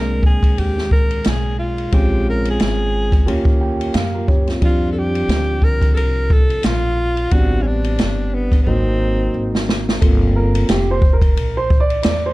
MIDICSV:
0, 0, Header, 1, 5, 480
1, 0, Start_track
1, 0, Tempo, 674157
1, 1371, Time_signature, 4, 2, 24, 8
1, 8781, End_track
2, 0, Start_track
2, 0, Title_t, "Alto saxophone"
2, 0, Program_c, 0, 65
2, 0, Note_on_c, 0, 70, 86
2, 163, Note_off_c, 0, 70, 0
2, 186, Note_on_c, 0, 68, 87
2, 421, Note_on_c, 0, 67, 83
2, 431, Note_off_c, 0, 68, 0
2, 652, Note_off_c, 0, 67, 0
2, 657, Note_on_c, 0, 70, 87
2, 909, Note_on_c, 0, 68, 82
2, 920, Note_off_c, 0, 70, 0
2, 1127, Note_off_c, 0, 68, 0
2, 1132, Note_on_c, 0, 65, 76
2, 1382, Note_on_c, 0, 67, 84
2, 1393, Note_off_c, 0, 65, 0
2, 1616, Note_off_c, 0, 67, 0
2, 1635, Note_on_c, 0, 70, 76
2, 1753, Note_off_c, 0, 70, 0
2, 1782, Note_on_c, 0, 68, 80
2, 2457, Note_off_c, 0, 68, 0
2, 3306, Note_on_c, 0, 65, 89
2, 3483, Note_off_c, 0, 65, 0
2, 3503, Note_on_c, 0, 69, 67
2, 3548, Note_on_c, 0, 67, 98
2, 3559, Note_off_c, 0, 69, 0
2, 4016, Note_on_c, 0, 70, 95
2, 4027, Note_off_c, 0, 67, 0
2, 4211, Note_off_c, 0, 70, 0
2, 4227, Note_on_c, 0, 69, 70
2, 4250, Note_on_c, 0, 70, 103
2, 4261, Note_off_c, 0, 69, 0
2, 4506, Note_on_c, 0, 69, 92
2, 4517, Note_off_c, 0, 70, 0
2, 4736, Note_on_c, 0, 65, 97
2, 4747, Note_off_c, 0, 69, 0
2, 5211, Note_on_c, 0, 66, 91
2, 5222, Note_off_c, 0, 65, 0
2, 5424, Note_on_c, 0, 61, 62
2, 5434, Note_off_c, 0, 66, 0
2, 5462, Note_on_c, 0, 62, 90
2, 5472, Note_off_c, 0, 61, 0
2, 5940, Note_on_c, 0, 59, 73
2, 5951, Note_off_c, 0, 62, 0
2, 6133, Note_off_c, 0, 59, 0
2, 6143, Note_on_c, 0, 59, 50
2, 6161, Note_on_c, 0, 60, 83
2, 6172, Note_off_c, 0, 59, 0
2, 6886, Note_off_c, 0, 60, 0
2, 8781, End_track
3, 0, Start_track
3, 0, Title_t, "Grand piano"
3, 0, Program_c, 1, 0
3, 0, Note_on_c, 1, 56, 60
3, 0, Note_on_c, 1, 58, 53
3, 0, Note_on_c, 1, 60, 50
3, 0, Note_on_c, 1, 62, 62
3, 1341, Note_off_c, 1, 56, 0
3, 1344, Note_off_c, 1, 58, 0
3, 1348, Note_off_c, 1, 62, 0
3, 1363, Note_off_c, 1, 60, 0
3, 1369, Note_on_c, 1, 56, 56
3, 1374, Note_on_c, 1, 60, 54
3, 1377, Note_on_c, 1, 61, 55
3, 1384, Note_on_c, 1, 65, 66
3, 2310, Note_off_c, 1, 56, 0
3, 2313, Note_off_c, 1, 60, 0
3, 2314, Note_off_c, 1, 61, 0
3, 2318, Note_off_c, 1, 65, 0
3, 2321, Note_on_c, 1, 67, 66
3, 2325, Note_on_c, 1, 58, 63
3, 2333, Note_on_c, 1, 61, 62
3, 2334, Note_on_c, 1, 65, 71
3, 2570, Note_on_c, 1, 79, 58
3, 2794, Note_off_c, 1, 79, 0
3, 2802, Note_off_c, 1, 61, 0
3, 2803, Note_off_c, 1, 65, 0
3, 2806, Note_on_c, 1, 77, 63
3, 2949, Note_on_c, 1, 70, 60
3, 2952, Note_on_c, 1, 65, 45
3, 3031, Note_off_c, 1, 77, 0
3, 3034, Note_off_c, 1, 67, 0
3, 3044, Note_on_c, 1, 73, 60
3, 3045, Note_off_c, 1, 70, 0
3, 3045, Note_on_c, 1, 67, 58
3, 3047, Note_off_c, 1, 65, 0
3, 3052, Note_on_c, 1, 61, 49
3, 3179, Note_off_c, 1, 67, 0
3, 3182, Note_on_c, 1, 65, 59
3, 3183, Note_off_c, 1, 61, 0
3, 3188, Note_on_c, 1, 60, 53
3, 3269, Note_off_c, 1, 58, 0
3, 3270, Note_off_c, 1, 73, 0
3, 3278, Note_off_c, 1, 60, 0
3, 3279, Note_on_c, 1, 55, 59
3, 3286, Note_on_c, 1, 53, 53
3, 3289, Note_on_c, 1, 60, 51
3, 3294, Note_on_c, 1, 62, 66
3, 3413, Note_off_c, 1, 65, 0
3, 5176, Note_off_c, 1, 55, 0
3, 5180, Note_off_c, 1, 53, 0
3, 5181, Note_off_c, 1, 60, 0
3, 5184, Note_off_c, 1, 62, 0
3, 5211, Note_on_c, 1, 55, 59
3, 5213, Note_on_c, 1, 59, 54
3, 5217, Note_on_c, 1, 60, 51
3, 5224, Note_on_c, 1, 62, 64
3, 6151, Note_off_c, 1, 55, 0
3, 6152, Note_off_c, 1, 59, 0
3, 6155, Note_off_c, 1, 60, 0
3, 6158, Note_off_c, 1, 62, 0
3, 6168, Note_on_c, 1, 54, 59
3, 6171, Note_on_c, 1, 58, 54
3, 6176, Note_on_c, 1, 60, 54
3, 6178, Note_on_c, 1, 63, 64
3, 7110, Note_off_c, 1, 54, 0
3, 7112, Note_off_c, 1, 58, 0
3, 7114, Note_off_c, 1, 60, 0
3, 7115, Note_off_c, 1, 63, 0
3, 7124, Note_on_c, 1, 69, 54
3, 7130, Note_on_c, 1, 58, 53
3, 7132, Note_on_c, 1, 60, 52
3, 7137, Note_on_c, 1, 65, 63
3, 7376, Note_on_c, 1, 70, 78
3, 7610, Note_on_c, 1, 67, 82
3, 7620, Note_off_c, 1, 70, 0
3, 7768, Note_on_c, 1, 72, 92
3, 7775, Note_off_c, 1, 67, 0
3, 7819, Note_off_c, 1, 69, 0
3, 7822, Note_off_c, 1, 58, 0
3, 7822, Note_off_c, 1, 60, 0
3, 7825, Note_off_c, 1, 65, 0
3, 7925, Note_on_c, 1, 70, 84
3, 7934, Note_off_c, 1, 72, 0
3, 8225, Note_off_c, 1, 70, 0
3, 8239, Note_on_c, 1, 72, 89
3, 8404, Note_on_c, 1, 74, 102
3, 8409, Note_off_c, 1, 72, 0
3, 8553, Note_off_c, 1, 74, 0
3, 8563, Note_on_c, 1, 74, 93
3, 8729, Note_on_c, 1, 72, 87
3, 8732, Note_off_c, 1, 74, 0
3, 8781, Note_off_c, 1, 72, 0
3, 8781, End_track
4, 0, Start_track
4, 0, Title_t, "Upright bass"
4, 0, Program_c, 2, 32
4, 0, Note_on_c, 2, 36, 77
4, 387, Note_off_c, 2, 36, 0
4, 413, Note_on_c, 2, 39, 83
4, 868, Note_off_c, 2, 39, 0
4, 893, Note_on_c, 2, 35, 81
4, 1348, Note_off_c, 2, 35, 0
4, 1374, Note_on_c, 2, 34, 80
4, 1828, Note_off_c, 2, 34, 0
4, 1854, Note_on_c, 2, 32, 77
4, 2308, Note_off_c, 2, 32, 0
4, 2329, Note_on_c, 2, 39, 83
4, 2786, Note_off_c, 2, 39, 0
4, 2809, Note_on_c, 2, 42, 81
4, 3266, Note_off_c, 2, 42, 0
4, 3290, Note_on_c, 2, 41, 87
4, 3746, Note_off_c, 2, 41, 0
4, 3763, Note_on_c, 2, 38, 77
4, 4222, Note_off_c, 2, 38, 0
4, 4253, Note_on_c, 2, 36, 83
4, 4708, Note_off_c, 2, 36, 0
4, 4729, Note_on_c, 2, 34, 85
4, 5185, Note_off_c, 2, 34, 0
4, 5211, Note_on_c, 2, 33, 90
4, 5689, Note_on_c, 2, 31, 82
4, 5699, Note_off_c, 2, 33, 0
4, 6145, Note_off_c, 2, 31, 0
4, 6171, Note_on_c, 2, 32, 95
4, 6627, Note_off_c, 2, 32, 0
4, 6652, Note_on_c, 2, 32, 85
4, 7107, Note_off_c, 2, 32, 0
4, 7137, Note_on_c, 2, 31, 90
4, 7590, Note_off_c, 2, 31, 0
4, 7613, Note_on_c, 2, 29, 89
4, 8068, Note_off_c, 2, 29, 0
4, 8094, Note_on_c, 2, 34, 96
4, 8548, Note_off_c, 2, 34, 0
4, 8577, Note_on_c, 2, 40, 87
4, 8781, Note_off_c, 2, 40, 0
4, 8781, End_track
5, 0, Start_track
5, 0, Title_t, "Drums"
5, 163, Note_on_c, 9, 36, 83
5, 234, Note_off_c, 9, 36, 0
5, 304, Note_on_c, 9, 36, 81
5, 310, Note_on_c, 9, 51, 55
5, 375, Note_off_c, 9, 36, 0
5, 381, Note_off_c, 9, 51, 0
5, 413, Note_on_c, 9, 51, 57
5, 485, Note_off_c, 9, 51, 0
5, 556, Note_on_c, 9, 38, 31
5, 627, Note_off_c, 9, 38, 0
5, 649, Note_on_c, 9, 36, 87
5, 721, Note_off_c, 9, 36, 0
5, 787, Note_on_c, 9, 51, 44
5, 858, Note_off_c, 9, 51, 0
5, 885, Note_on_c, 9, 44, 53
5, 885, Note_on_c, 9, 51, 68
5, 895, Note_on_c, 9, 38, 101
5, 957, Note_off_c, 9, 44, 0
5, 957, Note_off_c, 9, 51, 0
5, 966, Note_off_c, 9, 38, 0
5, 1268, Note_on_c, 9, 51, 38
5, 1339, Note_off_c, 9, 51, 0
5, 1370, Note_on_c, 9, 51, 65
5, 1372, Note_on_c, 9, 36, 88
5, 1441, Note_off_c, 9, 51, 0
5, 1443, Note_off_c, 9, 36, 0
5, 1747, Note_on_c, 9, 51, 49
5, 1818, Note_off_c, 9, 51, 0
5, 1848, Note_on_c, 9, 44, 39
5, 1848, Note_on_c, 9, 51, 58
5, 1856, Note_on_c, 9, 38, 99
5, 1919, Note_off_c, 9, 44, 0
5, 1919, Note_off_c, 9, 51, 0
5, 1927, Note_off_c, 9, 38, 0
5, 2223, Note_on_c, 9, 36, 89
5, 2229, Note_on_c, 9, 51, 49
5, 2294, Note_off_c, 9, 36, 0
5, 2301, Note_off_c, 9, 51, 0
5, 2336, Note_on_c, 9, 51, 61
5, 2407, Note_off_c, 9, 51, 0
5, 2458, Note_on_c, 9, 36, 89
5, 2529, Note_off_c, 9, 36, 0
5, 2711, Note_on_c, 9, 51, 47
5, 2782, Note_off_c, 9, 51, 0
5, 2805, Note_on_c, 9, 44, 48
5, 2805, Note_on_c, 9, 51, 70
5, 2815, Note_on_c, 9, 38, 101
5, 2876, Note_off_c, 9, 44, 0
5, 2876, Note_off_c, 9, 51, 0
5, 2886, Note_off_c, 9, 38, 0
5, 3050, Note_on_c, 9, 36, 90
5, 3121, Note_off_c, 9, 36, 0
5, 3186, Note_on_c, 9, 51, 36
5, 3195, Note_on_c, 9, 38, 30
5, 3257, Note_off_c, 9, 51, 0
5, 3266, Note_off_c, 9, 38, 0
5, 3288, Note_on_c, 9, 51, 60
5, 3289, Note_on_c, 9, 36, 91
5, 3359, Note_off_c, 9, 51, 0
5, 3360, Note_off_c, 9, 36, 0
5, 3668, Note_on_c, 9, 51, 49
5, 3739, Note_off_c, 9, 51, 0
5, 3768, Note_on_c, 9, 44, 45
5, 3768, Note_on_c, 9, 51, 58
5, 3776, Note_on_c, 9, 38, 96
5, 3839, Note_off_c, 9, 44, 0
5, 3839, Note_off_c, 9, 51, 0
5, 3847, Note_off_c, 9, 38, 0
5, 4000, Note_on_c, 9, 36, 78
5, 4071, Note_off_c, 9, 36, 0
5, 4141, Note_on_c, 9, 36, 85
5, 4145, Note_on_c, 9, 51, 50
5, 4212, Note_off_c, 9, 36, 0
5, 4217, Note_off_c, 9, 51, 0
5, 4252, Note_on_c, 9, 51, 56
5, 4323, Note_off_c, 9, 51, 0
5, 4488, Note_on_c, 9, 36, 92
5, 4559, Note_off_c, 9, 36, 0
5, 4629, Note_on_c, 9, 51, 43
5, 4700, Note_off_c, 9, 51, 0
5, 4720, Note_on_c, 9, 44, 54
5, 4720, Note_on_c, 9, 51, 68
5, 4730, Note_on_c, 9, 38, 99
5, 4791, Note_off_c, 9, 44, 0
5, 4791, Note_off_c, 9, 51, 0
5, 4801, Note_off_c, 9, 38, 0
5, 5105, Note_on_c, 9, 51, 36
5, 5176, Note_off_c, 9, 51, 0
5, 5206, Note_on_c, 9, 51, 63
5, 5210, Note_on_c, 9, 36, 95
5, 5277, Note_off_c, 9, 51, 0
5, 5281, Note_off_c, 9, 36, 0
5, 5585, Note_on_c, 9, 51, 48
5, 5656, Note_off_c, 9, 51, 0
5, 5686, Note_on_c, 9, 44, 46
5, 5686, Note_on_c, 9, 51, 63
5, 5694, Note_on_c, 9, 38, 98
5, 5757, Note_off_c, 9, 44, 0
5, 5757, Note_off_c, 9, 51, 0
5, 5765, Note_off_c, 9, 38, 0
5, 6064, Note_on_c, 9, 36, 86
5, 6071, Note_on_c, 9, 51, 49
5, 6135, Note_off_c, 9, 36, 0
5, 6142, Note_off_c, 9, 51, 0
5, 6799, Note_on_c, 9, 38, 65
5, 6870, Note_off_c, 9, 38, 0
5, 6900, Note_on_c, 9, 38, 88
5, 6972, Note_off_c, 9, 38, 0
5, 7040, Note_on_c, 9, 38, 72
5, 7111, Note_off_c, 9, 38, 0
5, 7134, Note_on_c, 9, 36, 101
5, 7134, Note_on_c, 9, 51, 71
5, 7205, Note_off_c, 9, 36, 0
5, 7205, Note_off_c, 9, 51, 0
5, 7511, Note_on_c, 9, 51, 53
5, 7582, Note_off_c, 9, 51, 0
5, 7609, Note_on_c, 9, 44, 49
5, 7609, Note_on_c, 9, 51, 69
5, 7617, Note_on_c, 9, 38, 106
5, 7680, Note_off_c, 9, 44, 0
5, 7680, Note_off_c, 9, 51, 0
5, 7688, Note_off_c, 9, 38, 0
5, 7845, Note_on_c, 9, 36, 96
5, 7916, Note_off_c, 9, 36, 0
5, 7986, Note_on_c, 9, 36, 99
5, 7989, Note_on_c, 9, 51, 58
5, 8057, Note_off_c, 9, 36, 0
5, 8060, Note_off_c, 9, 51, 0
5, 8097, Note_on_c, 9, 51, 67
5, 8168, Note_off_c, 9, 51, 0
5, 8333, Note_on_c, 9, 36, 97
5, 8404, Note_off_c, 9, 36, 0
5, 8473, Note_on_c, 9, 51, 47
5, 8545, Note_off_c, 9, 51, 0
5, 8567, Note_on_c, 9, 44, 53
5, 8567, Note_on_c, 9, 51, 78
5, 8576, Note_on_c, 9, 38, 111
5, 8638, Note_off_c, 9, 44, 0
5, 8638, Note_off_c, 9, 51, 0
5, 8648, Note_off_c, 9, 38, 0
5, 8781, End_track
0, 0, End_of_file